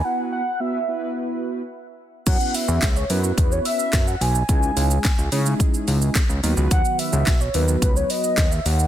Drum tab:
CC |----------------|x---------------|----------------|----------------|
HH |----------------|x-o-x-o-x-o-x-o-|x-o-x-o-x-o-x-o-|x-o-x-o-x-o-x-o-|
SH |----------------|xxxxxxxxxxxxxxxx|xxxxxxxxxxxxxxxx|xxxxxxxxxxxxxxxx|
CP |----------------|----x-------x---|----x-------x---|----x-------x---|
SD |----------------|----o-------o---|----o-------o---|----o-------o---|
BD |----------------|o---o---o---o---|o---o---o---o---|o---o---o---o---|